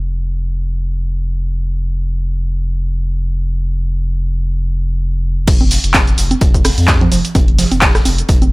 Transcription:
Already playing: analog synth bass F1
5.47 analog synth bass F1, kick, closed hi-hat, crash, shaker
5.61 closed hi-hat, high conga
5.71 closed hi-hat, open hi-hat, shaker
5.84 analog synth bass F1, closed hi-hat, shaker
5.94 kick, snare, clap, closed hi-hat, high conga, shaker
6.07 closed hi-hat, shaker
6.18 analog synth bass F1, closed hi-hat, open hi-hat, shaker
6.31 closed hi-hat, high conga, shaker
6.41 analog synth bass F1, kick, closed hi-hat, shaker
6.54 kick, closed hi-hat, shaker
6.64 cross-stick, open hi-hat, high conga, shaker
6.78 analog synth bass F2, closed hi-hat, shaker
6.88 kick, snare, clap, closed hi-hat, shaker
7.01 closed hi-hat, high conga, low conga
7.12 analog synth bass F1, closed hi-hat, open hi-hat, low conga, shaker
7.25 closed hi-hat, shaker
7.35 analog synth bass F1, kick, closed hi-hat, high conga, shaker
7.48 closed hi-hat
7.58 snare, closed hi-hat, open hi-hat, low conga, shaker
7.71 analog synth bass F1, closed hi-hat, high conga, shaker
7.81 kick, snare, clap, closed hi-hat, shaker
7.95 cross-stick, snare, closed hi-hat, shaker
8.05 analog synth bass F1, closed hi-hat, open hi-hat, high conga, shaker
8.18 closed hi-hat, shaker
8.29 analog synth bass F1, kick, closed hi-hat, shaker
8.42 closed hi-hat, high conga, shaker

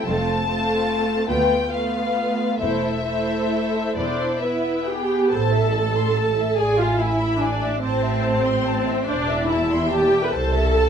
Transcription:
0.06 double bass section F1, cello section F2, viola section A3 C4, violin section F4 A4 A5
0.47 viola section A3 C4, violin section F4 A4
1.28 double bass section D2, cello section D2, viola section A3 B3, violin section F4 B4 G5
1.71 viola section A3 B3, violin section F4 B4 F5
2.60 double bass section E1, cello section E2, viola section A3 E4, violin section A4 C5 E5
3.07 viola section A3 E4, violin section A4 C5
3.97 double bass section E1, cello section E2, viola section B3 D4 E4, violin section C5 D5
4.40 viola section B3 E4, violin section B4 E5
4.86 viola section G4, violin section G#4 G5
5.32 double bass section A1, cello section A2, viola section A4, violin section C5 A5
5.53 violin section E5
5.74 violin section A5
5.97 violin section C6
6.17 violin section A5
6.39 violin section E5
6.57 double bass section A1, cello section A2, viola section G#4, violin section D5 G#5
6.79 viola section F4, violin section E5 F5
6.99 viola section E4, violin section G#5
7.03 violin section E5
7.20 violin section B5
7.40 viola section D4, violin section G#5
7.44 violin section D5
7.61 violin section E5
7.82 double bass section A1, cello section A2, viola section C4, violin section C5 A5
8.04 violin section E5
8.25 violin section A5
8.45 violin section C6
8.68 violin section A5
8.90 violin section E5
9.07 double bass section E1, cello section E2, viola section D4, violin section C5 D5
9.30 violin section E5
9.48 viola section E4, violin section E5 A5
9.71 violin section C6
9.89 viola section G4, violin section G5 A5
10.13 violin section E5
10.24 viola section B4
10.30 double bass section C2, cello section C2, viola section A4, violin section C5 A5
10.53 violin section E5
10.74 violin section A5

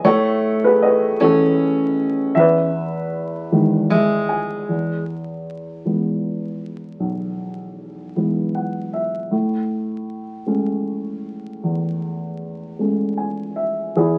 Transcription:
0.04 upright piano A2 A4 C#5, steel-string acoustic guitar A3
0.64 upright piano G#4 B4
0.82 upright piano B4 D#5
1.20 upright piano E3 A3 C#4 A4 C#5, steel-string acoustic guitar C#4
2.35 upright piano E2 E5
2.39 upright piano B4
3.52 upright piano D#3 E3 G#3
3.90 steel-string acoustic guitar G#3, upright piano E5
4.29 upright piano G#5
4.69 upright piano E2
5.85 upright piano E3 G#3 B3
7.00 upright piano B1
8.16 upright piano E3 G#3 B3
8.55 upright piano F#5
8.93 upright piano E5
9.31 upright piano A2
10.46 upright piano G#3 A3 C#4
11.63 upright piano E2
12.79 upright piano G#3 A3 C#4
13.17 upright piano G#5
13.56 upright piano E5
13.96 upright piano E2 E4 G#4

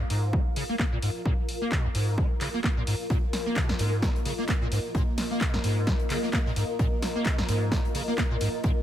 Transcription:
Already playing: ambient pad F4 A#4 F5
0.00 acid bass A#1
0.10 acid bass G#2, open hi-hat
0.33 acid bass A#3, kick
0.56 acid bass C#3, open hi-hat
0.69 acid bass A#3
0.79 acid bass A#3, kick, clap
0.92 acid bass A#2
1.02 acid bass G#2, open hi-hat
1.25 acid bass A#2, kick
1.49 open hi-hat
1.62 acid bass A#3
1.72 acid bass A#2, kick, clap
1.85 acid bass A#1
1.95 acid bass G#2, open hi-hat
2.18 acid bass A#3, kick
2.41 acid bass C#3, clap, open hi-hat
2.54 acid bass A#3
2.64 acid bass A#3, kick, clap
2.77 acid bass A#2
2.87 acid bass G#2, open hi-hat
3.08 acid bass A#2, analog synth pad A#3 A#4, ambient pad D#5, kick, closed hi-hat
3.33 snare, closed hi-hat, open hi-hat
3.46 acid bass A#3
3.56 acid bass A#2, kick, snare, clap, closed hi-hat
3.69 acid bass A#1, snare
3.79 acid bass G#2, closed hi-hat, open hi-hat
4.02 acid bass A#3, kick, snare, closed hi-hat
4.16 closed hi-hat
4.25 acid bass C#3, closed hi-hat, open hi-hat
4.38 acid bass A#3
4.48 acid bass A#3, kick, snare, clap, closed hi-hat
4.62 acid bass A#2
4.72 acid bass G#2, closed hi-hat, open hi-hat
4.95 acid bass A#2, kick, closed hi-hat
5.18 snare, closed hi-hat, open hi-hat
5.31 acid bass A#3
5.41 acid bass A#2, kick, snare, clap, closed hi-hat
5.54 acid bass A#1, snare
5.64 acid bass G#2, closed hi-hat, open hi-hat
5.87 acid bass A#3, kick, snare, closed hi-hat
6.00 closed hi-hat
6.10 acid bass C#3, clap, closed hi-hat, open hi-hat
6.23 acid bass A#3, snare
6.33 acid bass A#3, kick, snare, clap, closed hi-hat
6.46 acid bass A#2, snare
6.56 acid bass G#2, closed hi-hat, open hi-hat
6.79 acid bass A#2, kick, closed hi-hat
7.02 snare, closed hi-hat, open hi-hat
7.15 acid bass A#3
7.25 acid bass A#2, kick, snare, clap, closed hi-hat
7.38 acid bass A#1, snare
7.49 acid bass G#2, closed hi-hat, open hi-hat
7.72 acid bass A#3, kick, snare, closed hi-hat
7.85 closed hi-hat
7.95 acid bass C#3, closed hi-hat, open hi-hat
8.08 acid bass A#3
8.18 acid bass A#3, kick, snare, clap, closed hi-hat
8.31 acid bass A#2
8.41 acid bass G#2, closed hi-hat, open hi-hat
8.64 acid bass A#2, kick, closed hi-hat

